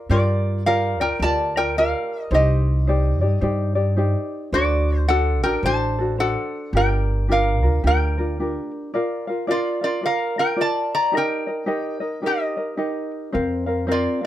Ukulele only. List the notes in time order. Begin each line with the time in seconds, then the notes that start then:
Already playing: F4 A#4 F5
0.10 F4 G4 A#4 D5
0.66 F4 G4 A#4 D5
1.00 F4 A#4 D5
1.22 F4 G4 A#4 D5
1.57 F4 A#4 D5
1.78 F4 G4 A#4 D5
2.31 D#4 G4 C5
2.87 D#4 G4 C5 D5
3.21 D#4 G4 D5
3.41 D#4 G4 C5 D5
3.75 D#4 G4 D5
3.97 D#4 G4 C5 D5
4.53 D4 F#4 A4 C5
5.08 D4 F#4 A4 C5
5.44 D4 F#4 A4
5.64 D4 F#4 A4 C5
5.99 D4 F#4 A4
6.18 D4 F#4 A4 C5
6.75 D4 F4 G4 A#4
7.28 D4 F4 G4 A#4
7.63 D4 F4 A#4
7.83 D4 F4 G4 A#4
8.18 D4 F4 A#4
8.39 D4 F4 G4 A#4
8.94 F4 A#4 D5 F5
9.27 F4 A#4 F5
9.47 F4 A#4 D5 F5
9.81 F4 A#4 F5
10.01 F4 A#4 D5 F5
10.36 F4 A#4 F5
10.57 F4 A#4 D5 F5
11.12 D#4 G4 A#4 D#5
11.47 D#4 A#4 D#5
11.66 D#4 G4 A#4 D#5
12.00 D#4 A#4 D#5
12.22 D#4 G4 A#4 D#5
12.57 D#4 A#4 D#5
12.77 D#4 G4 A#4 D#5
13.32 C4 A#4 C5 F5
13.66 C4 A#4 F5
13.87 C4 A#4 C5 F5
14.21 A#4 F5